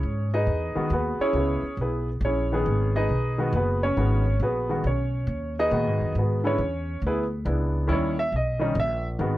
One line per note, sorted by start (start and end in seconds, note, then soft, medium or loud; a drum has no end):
0.00 0.46 G#2 medium
0.00 0.30 C#4 medium
0.00 0.30 G#4 medium
0.00 0.30 C#5 medium
0.34 0.88 D#4 medium
0.34 0.87 G#4 medium
0.34 0.88 B4 medium
0.34 0.87 D#5 medium
0.47 0.74 E2 medium
0.75 0.89 D#3 medium
0.75 0.89 G#3 medium
0.75 0.89 B3 medium
0.75 0.90 F#4 medium
0.75 muted upright bass stroke soft
0.90 1.18 D#2 medium
0.90 1.20 B3 medium
0.90 1.21 F#4 medium
0.90 1.20 G#4 medium
0.90 1.20 B4 medium
1.19 1.75 C#4 medium
1.19 1.35 E4 medium
1.19 1.75 G#4 medium
1.19 1.75 C#5 medium
1.19 muted upright bass stroke soft
1.33 1.61 C#2 medium
1.33 1.61 C#3 medium
1.33 1.61 G#3 medium
1.33 1.62 B3 medium
1.33 1.62 E4 medium
1.63 muted upright bass stroke soft
1.77 2.20 B1 medium
1.81 2.08 B3 medium
1.81 2.08 E4 medium
1.81 2.08 G#4 medium
1.81 2.08 B4 medium
2.21 2.64 A#1 loud
2.25 2.92 C#4 medium
2.25 2.64 E4 medium
2.25 2.52 G#4 medium
2.25 2.92 C#5 medium
2.52 3.07 D#3 medium
2.52 3.07 G#3 medium
2.52 3.07 B3 medium
2.52 2.95 G#4 medium
2.66 3.08 G#1 medium
2.96 3.50 D#4 medium
2.96 3.49 G#4 medium
2.96 3.50 B4 medium
2.96 3.49 D#5 medium
3.09 3.51 B1 medium
3.38 3.51 D#3 medium
3.38 3.51 G#3 medium
3.38 3.52 B3 medium
3.38 3.52 F#4 medium
3.52 3.95 F#1 loud
3.52 3.83 B3 medium
3.52 3.83 F#4 medium
3.52 3.83 G#4 medium
3.52 3.82 B4 medium
3.83 4.37 C#4 medium
3.83 4.37 C#5 medium
3.97 4.39 G#1 medium
3.97 4.23 D#3 medium
3.97 4.23 G#3 medium
3.97 4.23 B3 medium
3.97 4.24 F#4 medium
4.40 4.82 A#1 medium
4.40 4.69 B3 medium
4.40 4.69 F#4 medium
4.40 4.70 G#4 medium
4.40 4.70 B4 medium
4.69 4.82 D#3 medium
4.69 4.83 G#3 medium
4.69 4.83 B3 medium
4.69 4.83 F#4 medium
4.84 5.26 B1 medium
4.84 5.54 C#4 medium
4.84 5.54 C#5 medium
5.27 5.69 D#2 medium
5.59 6.12 D#4 medium
5.59 6.12 G#4 medium
5.59 6.12 B4 medium
5.59 6.12 D#5 loud
5.71 5.87 A#2 medium
5.71 6.38 D#3 medium
5.71 6.38 G#3 medium
5.71 6.17 B3 medium
5.71 6.18 F#4 medium
5.87 6.00 G#2 medium
6.01 6.14 F#2 medium
6.15 6.57 G#2 medium
6.15 6.43 B3 medium
6.15 6.45 B4 medium
6.19 6.45 F#4 medium
6.19 6.45 G#4 medium
6.44 6.57 D3 medium
6.44 6.57 G#3 medium
6.44 6.57 B3 medium
6.44 6.99 C#4 medium
6.44 6.57 E4 medium
6.44 6.99 C#5 medium
6.58 7.00 E2 medium
7.02 7.44 D2 medium
7.07 7.23 B3 medium
7.07 7.23 E4 medium
7.07 7.23 G#4 medium
7.07 7.23 B4 medium
7.45 7.88 C#2 loud
7.45 7.89 G#3 medium
7.45 7.89 B3 medium
7.45 7.89 D4 medium
7.45 7.87 E4 medium
7.87 8.31 D#2 medium
7.87 8.14 D#3 medium
7.87 8.15 G3 medium
7.87 8.15 C#4 medium
7.87 8.15 E4 medium
7.93 8.19 C#5 medium
8.19 8.33 E5 medium
8.32 8.75 B1 medium
8.32 8.75 D#5 medium
8.59 8.73 D#3 medium
8.59 8.74 G3 medium
8.59 8.74 C#4 medium
8.59 8.74 D#4 medium
8.75 9.18 A#1 loud
8.80 9.06 E5 loud
9.19 9.38 G#1 medium
9.19 9.38 D#3 medium
9.19 9.38 G#3 medium
9.19 9.38 B3 medium
9.19 9.38 F#4 medium